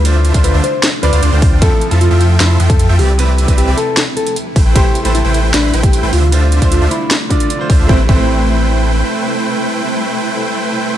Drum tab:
RD |x-------x-------|x-------x-------|x-------x-------|x-------x-------|
HH |x-xxx-x-x-xxx-o-|x-xxx-x-x-xxx-o-|x-xxx-x-x-xxx-o-|x-xxx-x-x-xxx-o-|
SD |--------o-------|--------o-------|--------o-------|--------o-------|
BD |---o----------o-|o----------o----|---o----------o-|o----------o----|

RD |x-------x-------|----------------|----------------|
HH |x-xxx-x-x-xxx-o-|----------------|----------------|
SD |--------o-------|----------------|----------------|
BD |---o------o---o-|o-o-------------|----------------|